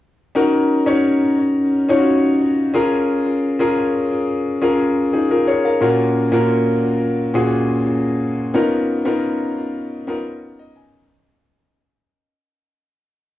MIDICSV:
0, 0, Header, 1, 2, 480
1, 0, Start_track
1, 0, Key_signature, -6, "minor"
1, 0, Tempo, 681818
1, 251, Time_signature, 4, 2, 24, 8
1, 9421, End_track
2, 0, Start_track
2, 0, Title_t, "Grand piano"
2, 0, Program_c, 0, 0
2, 245, Note_on_c, 0, 61, 73
2, 249, Note_on_c, 0, 63, 67
2, 252, Note_on_c, 0, 66, 68
2, 253, Note_on_c, 0, 70, 80
2, 394, Control_c, 0, 64, 127
2, 546, Note_off_c, 0, 61, 0
2, 548, Note_off_c, 0, 63, 0
2, 549, Note_off_c, 0, 66, 0
2, 550, Note_off_c, 0, 70, 0
2, 608, Note_on_c, 0, 61, 73
2, 609, Note_on_c, 0, 63, 65
2, 613, Note_on_c, 0, 66, 64
2, 616, Note_on_c, 0, 73, 82
2, 1204, Note_off_c, 0, 61, 0
2, 1205, Note_off_c, 0, 63, 0
2, 1207, Note_off_c, 0, 66, 0
2, 1208, Note_off_c, 0, 73, 0
2, 1330, Note_on_c, 0, 61, 70
2, 1334, Note_on_c, 0, 63, 64
2, 1335, Note_on_c, 0, 65, 55
2, 1340, Note_on_c, 0, 73, 78
2, 1379, Note_off_c, 0, 65, 0
2, 1382, Note_on_c, 0, 66, 66
2, 1916, Note_off_c, 0, 61, 0
2, 1927, Note_on_c, 0, 61, 76
2, 1932, Note_on_c, 0, 65, 68
2, 1933, Note_off_c, 0, 63, 0
2, 1933, Note_on_c, 0, 68, 70
2, 1936, Note_off_c, 0, 73, 0
2, 1936, Note_on_c, 0, 70, 86
2, 1942, Control_c, 0, 64, 0
2, 1956, Note_off_c, 0, 66, 0
2, 2049, Control_c, 0, 64, 127
2, 2425, Note_off_c, 0, 61, 0
2, 2427, Note_off_c, 0, 65, 0
2, 2428, Note_off_c, 0, 68, 0
2, 2430, Note_off_c, 0, 70, 0
2, 2529, Note_on_c, 0, 61, 75
2, 2530, Note_on_c, 0, 65, 70
2, 2534, Note_on_c, 0, 68, 67
2, 2536, Note_on_c, 0, 70, 83
2, 3125, Note_off_c, 0, 61, 0
2, 3125, Note_off_c, 0, 65, 0
2, 3127, Note_off_c, 0, 68, 0
2, 3128, Note_off_c, 0, 70, 0
2, 3249, Note_on_c, 0, 61, 69
2, 3250, Note_on_c, 0, 65, 69
2, 3253, Note_on_c, 0, 68, 65
2, 3257, Note_on_c, 0, 70, 75
2, 3602, Note_off_c, 0, 68, 0
2, 3611, Note_off_c, 0, 65, 0
2, 3612, Note_on_c, 0, 68, 55
2, 3614, Note_off_c, 0, 70, 0
2, 3617, Note_on_c, 0, 63, 50
2, 3726, Note_off_c, 0, 68, 0
2, 3728, Note_off_c, 0, 63, 0
2, 3737, Note_on_c, 0, 70, 66
2, 3740, Note_on_c, 0, 65, 56
2, 3849, Note_off_c, 0, 70, 0
2, 3850, Note_off_c, 0, 65, 0
2, 3856, Note_on_c, 0, 73, 59
2, 3860, Note_on_c, 0, 68, 52
2, 3944, Note_off_c, 0, 61, 0
2, 3968, Note_off_c, 0, 73, 0
2, 3970, Note_off_c, 0, 68, 0
2, 3978, Note_on_c, 0, 77, 55
2, 3980, Note_on_c, 0, 70, 53
2, 4086, Note_off_c, 0, 70, 0
2, 4089, Note_on_c, 0, 46, 73
2, 4090, Note_on_c, 0, 61, 66
2, 4093, Note_on_c, 0, 65, 68
2, 4096, Note_on_c, 0, 66, 68
2, 4097, Note_on_c, 0, 70, 86
2, 4101, Control_c, 0, 64, 0
2, 4203, Note_off_c, 0, 77, 0
2, 4221, Control_c, 0, 64, 127
2, 4388, Note_off_c, 0, 46, 0
2, 4388, Note_off_c, 0, 61, 0
2, 4390, Note_off_c, 0, 65, 0
2, 4391, Note_off_c, 0, 66, 0
2, 4391, Note_off_c, 0, 70, 0
2, 4448, Note_on_c, 0, 46, 74
2, 4450, Note_on_c, 0, 61, 69
2, 4452, Note_on_c, 0, 65, 69
2, 4455, Note_on_c, 0, 66, 66
2, 4458, Note_on_c, 0, 70, 86
2, 5045, Note_off_c, 0, 46, 0
2, 5045, Note_off_c, 0, 61, 0
2, 5047, Note_off_c, 0, 65, 0
2, 5048, Note_off_c, 0, 66, 0
2, 5050, Note_off_c, 0, 70, 0
2, 5167, Note_on_c, 0, 46, 72
2, 5170, Note_on_c, 0, 61, 64
2, 5173, Note_on_c, 0, 65, 69
2, 5174, Note_on_c, 0, 66, 65
2, 5174, Note_on_c, 0, 68, 78
2, 5863, Note_off_c, 0, 46, 0
2, 5865, Note_off_c, 0, 61, 0
2, 5866, Note_off_c, 0, 65, 0
2, 5867, Note_off_c, 0, 66, 0
2, 5867, Note_off_c, 0, 68, 0
2, 6011, Note_on_c, 0, 59, 76
2, 6014, Note_on_c, 0, 61, 67
2, 6014, Note_on_c, 0, 63, 70
2, 6015, Note_on_c, 0, 65, 70
2, 6020, Control_c, 0, 64, 0
2, 6021, Note_on_c, 0, 70, 83
2, 6145, Control_c, 0, 64, 127
2, 6309, Note_off_c, 0, 59, 0
2, 6310, Note_off_c, 0, 61, 0
2, 6310, Note_off_c, 0, 63, 0
2, 6311, Note_off_c, 0, 65, 0
2, 6313, Note_off_c, 0, 70, 0
2, 6370, Note_on_c, 0, 59, 78
2, 6372, Note_on_c, 0, 61, 70
2, 6374, Note_on_c, 0, 63, 72
2, 6377, Note_on_c, 0, 65, 68
2, 6378, Note_on_c, 0, 70, 85
2, 6966, Note_off_c, 0, 59, 0
2, 6967, Note_off_c, 0, 61, 0
2, 6968, Note_off_c, 0, 63, 0
2, 6969, Note_off_c, 0, 65, 0
2, 6970, Note_off_c, 0, 70, 0
2, 7089, Note_on_c, 0, 59, 69
2, 7092, Note_on_c, 0, 61, 67
2, 7096, Note_on_c, 0, 63, 66
2, 7096, Note_on_c, 0, 65, 67
2, 7099, Note_on_c, 0, 70, 81
2, 7456, Note_on_c, 0, 75, 69
2, 7566, Note_off_c, 0, 75, 0
2, 7574, Note_on_c, 0, 80, 66
2, 7784, Note_off_c, 0, 59, 0
2, 7786, Note_off_c, 0, 61, 0
2, 7788, Note_off_c, 0, 63, 0
2, 7788, Note_off_c, 0, 65, 0
2, 7789, Note_off_c, 0, 70, 0
2, 7908, Note_off_c, 0, 80, 0
2, 7940, Control_c, 0, 64, 0
2, 9421, End_track
0, 0, End_of_file